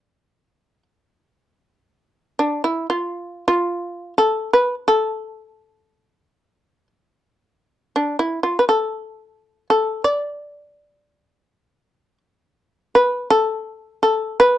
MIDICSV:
0, 0, Header, 1, 2, 480
1, 0, Start_track
1, 0, Tempo, 748130
1, 1047, Time_signature, 4, 2, 24, 8
1, 1995, Tempo, 702576
1, 3435, Tempo, 679502
1, 5835, Tempo, 704225
1, 7275, Tempo, 740741
1, 9772, End_track
2, 0, Start_track
2, 0, Title_t, "Shamisen"
2, 0, Program_c, 0, 106
2, 0, Note_on_c, 0, 74, 61
2, 529, Note_off_c, 0, 74, 0
2, 1534, Note_on_c, 0, 62, 58
2, 1676, Note_off_c, 0, 62, 0
2, 1694, Note_on_c, 0, 64, 61
2, 1834, Note_off_c, 0, 64, 0
2, 1859, Note_on_c, 0, 65, 59
2, 2224, Note_off_c, 0, 65, 0
2, 2247, Note_on_c, 0, 65, 78
2, 2693, Note_off_c, 0, 65, 0
2, 2726, Note_on_c, 0, 69, 76
2, 2943, Note_off_c, 0, 69, 0
2, 2968, Note_on_c, 0, 71, 73
2, 3110, Note_off_c, 0, 71, 0
2, 3203, Note_on_c, 0, 69, 72
2, 4603, Note_off_c, 0, 69, 0
2, 5371, Note_on_c, 0, 62, 68
2, 5511, Note_off_c, 0, 62, 0
2, 5536, Note_on_c, 0, 64, 68
2, 5675, Note_off_c, 0, 64, 0
2, 5706, Note_on_c, 0, 65, 62
2, 5798, Note_off_c, 0, 65, 0
2, 5818, Note_on_c, 0, 71, 50
2, 5850, Note_off_c, 0, 71, 0
2, 5885, Note_on_c, 0, 69, 65
2, 6552, Note_off_c, 0, 69, 0
2, 6576, Note_on_c, 0, 69, 72
2, 6788, Note_off_c, 0, 69, 0
2, 6809, Note_on_c, 0, 74, 61
2, 8214, Note_off_c, 0, 74, 0
2, 8716, Note_on_c, 0, 71, 70
2, 8934, Note_off_c, 0, 71, 0
2, 8945, Note_on_c, 0, 69, 78
2, 9404, Note_off_c, 0, 69, 0
2, 9414, Note_on_c, 0, 69, 70
2, 9647, Note_off_c, 0, 69, 0
2, 9653, Note_on_c, 0, 71, 91
2, 9772, Note_off_c, 0, 71, 0
2, 9772, End_track
0, 0, End_of_file